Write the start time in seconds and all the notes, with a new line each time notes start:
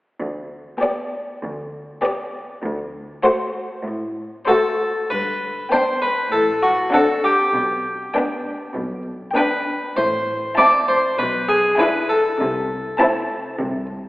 0.20 D2
0.81 B3 G4 D5
1.43 D2
2.02 B3 G4 D5
2.64 D2
3.23 A3 F#4 C5
3.85 A2
4.47 A3 F#4 A4 C5
5.10 G1 G2 B4, triangle
5.72 B3 D4 C5 G5
6.02 B4
6.32 A1 A2 A4
6.63 F#4
6.94 C4 D4 A4 F#5
7.24 G4
7.55 B1 B2
8.14 B3 D4 G5
8.76 B1 B2
9.36 B3 D4 B4 G5
9.97 A1 A2 C5
10.57 C4 E4 D5 A5
10.88 C5
11.19 B1 B2 B4
11.49 G#4
11.79 D4 E4 B4 G#5
12.09 A4
12.40 C2 C3
12.99 C4 E4 A5
13.60 C2 C3